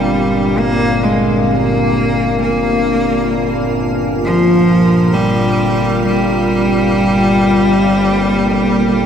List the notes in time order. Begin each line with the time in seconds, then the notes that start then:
Already playing: G1 A#2 G3 A#3 C4 D4 G4 A#4
0.58 A#3
1.03 G#3
1.50 A#3
2.41 A#3
4.24 F3
5.13 G3
6.05 G3